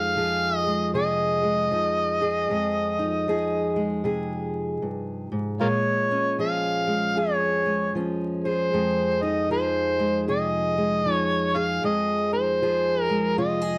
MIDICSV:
0, 0, Header, 1, 3, 480
1, 0, Start_track
1, 0, Key_signature, -4, "minor"
1, 0, Tempo, 776197
1, 1545, Time_signature, 4, 2, 24, 8
1, 8523, End_track
2, 0, Start_track
2, 0, Title_t, "Harmonica"
2, 0, Program_c, 0, 22
2, 0, Note_on_c, 0, 77, 122
2, 351, Note_off_c, 0, 77, 0
2, 351, Note_on_c, 0, 75, 122
2, 553, Note_off_c, 0, 75, 0
2, 589, Note_on_c, 0, 75, 103
2, 2486, Note_off_c, 0, 75, 0
2, 3468, Note_on_c, 0, 65, 63
2, 3468, Note_on_c, 0, 70, 63
2, 3468, Note_on_c, 0, 73, 90
2, 3509, Note_off_c, 0, 65, 0
2, 3509, Note_off_c, 0, 70, 0
2, 3924, Note_off_c, 0, 73, 0
2, 3963, Note_on_c, 0, 77, 95
2, 4445, Note_on_c, 0, 73, 81
2, 4454, Note_off_c, 0, 77, 0
2, 4918, Note_off_c, 0, 73, 0
2, 5221, Note_on_c, 0, 72, 87
2, 5703, Note_on_c, 0, 75, 88
2, 5712, Note_off_c, 0, 72, 0
2, 5876, Note_off_c, 0, 75, 0
2, 5885, Note_on_c, 0, 72, 80
2, 6332, Note_off_c, 0, 72, 0
2, 6367, Note_on_c, 0, 75, 106
2, 6880, Note_off_c, 0, 75, 0
2, 6880, Note_on_c, 0, 73, 106
2, 7150, Note_on_c, 0, 77, 98
2, 7160, Note_off_c, 0, 73, 0
2, 7318, Note_off_c, 0, 77, 0
2, 7326, Note_on_c, 0, 75, 105
2, 7595, Note_off_c, 0, 75, 0
2, 7624, Note_on_c, 0, 72, 94
2, 8051, Note_off_c, 0, 72, 0
2, 8051, Note_on_c, 0, 70, 94
2, 8247, Note_off_c, 0, 70, 0
2, 8277, Note_on_c, 0, 75, 99
2, 8523, Note_off_c, 0, 75, 0
2, 8523, End_track
3, 0, Start_track
3, 0, Title_t, "Steel-string acoustic guitar"
3, 0, Program_c, 1, 25
3, 0, Note_on_c, 1, 41, 77
3, 0, Note_on_c, 1, 56, 66
3, 0, Note_on_c, 1, 63, 56
3, 0, Note_on_c, 1, 68, 69
3, 104, Note_on_c, 1, 53, 61
3, 107, Note_off_c, 1, 68, 0
3, 109, Note_on_c, 1, 68, 66
3, 408, Note_off_c, 1, 56, 0
3, 411, Note_on_c, 1, 56, 50
3, 579, Note_on_c, 1, 48, 58
3, 583, Note_off_c, 1, 68, 0
3, 586, Note_on_c, 1, 68, 68
3, 883, Note_off_c, 1, 56, 0
3, 885, Note_on_c, 1, 56, 52
3, 1054, Note_off_c, 1, 63, 0
3, 1056, Note_off_c, 1, 53, 0
3, 1059, Note_on_c, 1, 53, 60
3, 1062, Note_off_c, 1, 48, 0
3, 1062, Note_on_c, 1, 63, 56
3, 1368, Note_off_c, 1, 68, 0
3, 1371, Note_on_c, 1, 68, 65
3, 1522, Note_off_c, 1, 63, 0
3, 1539, Note_off_c, 1, 41, 0
3, 1546, Note_on_c, 1, 41, 74
3, 1549, Note_off_c, 1, 56, 0
3, 1551, Note_on_c, 1, 56, 56
3, 1848, Note_on_c, 1, 63, 56
3, 1867, Note_off_c, 1, 53, 0
3, 2027, Note_on_c, 1, 53, 67
3, 2032, Note_off_c, 1, 68, 0
3, 2035, Note_on_c, 1, 68, 69
3, 2324, Note_off_c, 1, 56, 0
3, 2326, Note_on_c, 1, 56, 54
3, 2498, Note_on_c, 1, 48, 61
3, 2502, Note_off_c, 1, 68, 0
3, 2504, Note_on_c, 1, 68, 67
3, 2979, Note_off_c, 1, 41, 0
3, 2982, Note_on_c, 1, 43, 56
3, 3000, Note_off_c, 1, 56, 0
3, 3285, Note_off_c, 1, 43, 0
3, 3289, Note_on_c, 1, 44, 63
3, 3443, Note_off_c, 1, 48, 0
3, 3449, Note_off_c, 1, 63, 0
3, 3465, Note_on_c, 1, 46, 70
3, 3468, Note_on_c, 1, 56, 62
3, 3469, Note_off_c, 1, 44, 0
3, 3484, Note_off_c, 1, 68, 0
3, 3780, Note_on_c, 1, 61, 56
3, 3946, Note_off_c, 1, 53, 0
3, 3949, Note_on_c, 1, 53, 60
3, 3955, Note_on_c, 1, 68, 64
3, 4249, Note_off_c, 1, 56, 0
3, 4251, Note_on_c, 1, 56, 54
3, 4427, Note_on_c, 1, 41, 62
3, 4428, Note_off_c, 1, 46, 0
3, 4432, Note_off_c, 1, 68, 0
3, 4434, Note_on_c, 1, 68, 68
3, 4733, Note_off_c, 1, 56, 0
3, 4736, Note_on_c, 1, 56, 53
3, 4915, Note_off_c, 1, 53, 0
3, 4915, Note_off_c, 1, 61, 0
3, 4917, Note_on_c, 1, 53, 63
3, 4925, Note_on_c, 1, 61, 57
3, 5224, Note_off_c, 1, 68, 0
3, 5226, Note_on_c, 1, 68, 67
3, 5376, Note_off_c, 1, 61, 0
3, 5389, Note_off_c, 1, 41, 0
3, 5401, Note_on_c, 1, 41, 74
3, 5402, Note_off_c, 1, 56, 0
3, 5405, Note_on_c, 1, 56, 63
3, 5706, Note_on_c, 1, 63, 62
3, 5724, Note_off_c, 1, 53, 0
3, 5876, Note_on_c, 1, 53, 66
3, 5877, Note_off_c, 1, 68, 0
3, 5880, Note_on_c, 1, 68, 66
3, 6177, Note_off_c, 1, 56, 0
3, 6180, Note_on_c, 1, 56, 58
3, 6355, Note_on_c, 1, 48, 62
3, 6356, Note_off_c, 1, 68, 0
3, 6359, Note_on_c, 1, 68, 66
3, 6662, Note_off_c, 1, 56, 0
3, 6664, Note_on_c, 1, 56, 56
3, 6831, Note_off_c, 1, 48, 0
3, 6833, Note_off_c, 1, 53, 0
3, 6835, Note_on_c, 1, 53, 61
3, 6837, Note_off_c, 1, 63, 0
3, 6840, Note_on_c, 1, 63, 53
3, 7144, Note_off_c, 1, 68, 0
3, 7147, Note_on_c, 1, 68, 71
3, 7314, Note_off_c, 1, 41, 0
3, 7316, Note_on_c, 1, 41, 75
3, 7318, Note_off_c, 1, 56, 0
3, 7321, Note_on_c, 1, 56, 61
3, 7335, Note_off_c, 1, 63, 0
3, 7623, Note_on_c, 1, 63, 59
3, 7642, Note_off_c, 1, 53, 0
3, 7806, Note_on_c, 1, 53, 66
3, 7807, Note_off_c, 1, 68, 0
3, 7810, Note_on_c, 1, 68, 73
3, 8097, Note_off_c, 1, 56, 0
3, 8100, Note_on_c, 1, 56, 58
3, 8272, Note_off_c, 1, 68, 0
3, 8273, Note_on_c, 1, 48, 65
3, 8274, Note_on_c, 1, 65, 69
3, 8419, Note_off_c, 1, 65, 0
3, 8419, Note_on_c, 1, 68, 62
3, 8523, Note_off_c, 1, 41, 0
3, 8523, Note_off_c, 1, 48, 0
3, 8523, Note_off_c, 1, 53, 0
3, 8523, Note_off_c, 1, 56, 0
3, 8523, Note_off_c, 1, 63, 0
3, 8523, Note_off_c, 1, 68, 0
3, 8523, End_track
0, 0, End_of_file